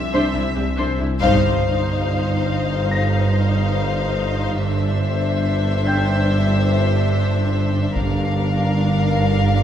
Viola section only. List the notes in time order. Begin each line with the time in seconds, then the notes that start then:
0.12 D4 C5
0.33 D4 E4
0.54 D4 G4
0.76 D4 C5
1.00 D4 E4
1.21 D#4
4.60 D4
7.96 D4